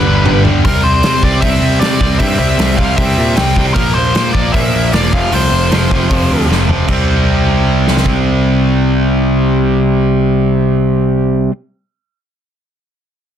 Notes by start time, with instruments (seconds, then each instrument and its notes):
Already playing: overdriven electric guitar G2 D3 G3 B3 D4, lead electric guitar B4
0.05 picked electric bass G1, overdriven electric guitar G2 D3 G3
0.24 picked electric bass G1, overdriven electric guitar G2 D3 G3, mid tom
0.44 picked electric bass G1, overdriven electric guitar G2 D3 G3, floor tom
0.64 picked electric bass C2, overdriven electric guitar C3 G3 C4, lead electric guitar A#4, kick, open hi-hat
0.83 picked electric bass C2, lead electric guitar C5
1.03 overdriven electric guitar C3 G3 C4, picked electric bass C3, snare, open hi-hat
1.23 picked electric bass C2, overdriven electric guitar C3 G3 C4, lead electric guitar D5, kick
1.41 picked electric bass C2, overdriven electric guitar C3 G3 C4, lead electric guitar E5, kick, open hi-hat
1.62 picked electric bass C2
1.80 overdriven electric guitar C3 G3 C4, picked electric bass C3, lead electric guitar D5, snare, open hi-hat
2.01 picked electric bass C2, overdriven electric guitar C3 G3 C4, kick
2.19 picked electric bass G2, overdriven electric guitar C3 G3 C4, lead electric guitar E5, kick, open hi-hat
2.39 picked electric bass C2, lead electric guitar E5
2.59 picked electric bass C2, overdriven electric guitar C3 G3 C4, snare, open hi-hat
2.77 picked electric bass C2, overdriven electric guitar C3 G3 C4, lead electric guitar F5, kick
2.97 picked electric bass C2, overdriven electric guitar C3 G3 C4, lead electric guitar E5, kick, open hi-hat
3.17 picked electric bass A#2
3.36 picked electric bass C2, overdriven electric guitar C3 G3 C4, lead electric guitar G5, snare, open hi-hat
3.56 picked electric bass C2, overdriven electric guitar C3 G3 C4, kick
3.74 picked electric bass A#1, overdriven electric guitar A#2 F3 A#3, lead electric guitar A#4, kick, open hi-hat
3.94 picked electric bass A#1, lead electric guitar C5
4.14 overdriven electric guitar A#2 F3 A#3, picked electric bass A#2, snare, open hi-hat
4.33 picked electric bass A#1, overdriven electric guitar A#2 F3 A#3, lead electric guitar D5, kick
4.53 picked electric bass A#1, overdriven electric guitar A#2 F3 A#3, lead electric guitar E5, kick, open hi-hat
4.74 picked electric bass A#1
4.93 picked electric bass E1, overdriven electric guitar A#2 F3 A#3, lead electric guitar D5, snare, open hi-hat
5.12 picked electric bass F1, overdriven electric guitar F2 C3 F3, lead electric guitar F5, kick
5.31 picked electric bass C2, overdriven electric guitar F2 C3 F3, lead electric guitar C5, open hi-hat
5.51 picked electric bass F1
5.70 picked electric bass F1, overdriven electric guitar F2 C3 F3, snare, open hi-hat
5.90 picked electric bass F1, overdriven electric guitar F2 C3 F3, kick
6.10 picked electric bass F1, overdriven electric guitar F2 C3 F3, kick, open hi-hat
6.30 picked electric bass D2
6.49 picked electric bass F1, overdriven electric guitar F2 C3 F3, snare
6.68 picked electric bass F1, overdriven electric guitar F2 C3 F3, floor tom
6.87 picked electric bass C2, overdriven electric guitar C3 G3 C4, kick, crash
7.88 snare
7.97 snare
8.06 kick